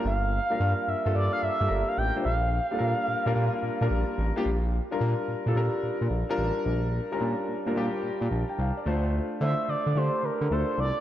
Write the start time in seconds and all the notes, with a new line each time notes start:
0.05 G1 F5
0.50 G3 A#3 D4 F4 A#4
0.60 G2
0.88 G2 E5
1.05 G2 G3 A#3 D4 F4 A4
1.15 G2 D5
1.33 F5
1.42 G2 E5
1.61 G2 G3 A#3 D4 F4 A4
1.68 G1 A#4
1.88 F5
1.98 A1 G5
2.16 G3 A#3 D4 F4 C5
2.25 A#1 F5
2.71 G3 A#3 D4 F4 A4
2.79 A#2 A#4
3.08 A#2
3.26 A#2 G3 A#3 D4 F4 A#4
3.36 A#2
3.63 A#2
3.81 A#2 G3 A#3 D4 F4 A#4
3.90 A#1
4.18 A1
4.36 G3 A#3 D4 F4 G4
4.46 A#1
4.91 G3 D4 F4 A#4
5.01 A#2
5.28 A#2
5.46 A#2 G3 D4 F4 A4
5.55 A#2 G3 D4 F4 A#4
5.83 A#2
6.01 A#2
6.10 A#1
6.29 G3 D4 F4 A#4
6.38 A1
6.65 A#1
7.11 G3 C#4 F4 A#4
7.18 A#2 D4
7.48 A#2
7.66 A#2 G3 D4 F4 A#4
7.75 A#2 G3 D4 F4 G4
8.03 A#2
8.21 A#2
8.31 A#1 A5
8.49 G5
8.58 C2 F5
8.77 D5
8.86 D2 A3 D4 F4 C5
9.41 D3 A3 D4 E4 C5 E5
9.48 F4
9.68 D3 D5
9.86 D3
9.95 D3 A3 D4 F4 G4 C5
10.23 D3 A#4
10.41 D3
10.51 D2 A3 D4 F4 A4 C5
10.78 C2 D5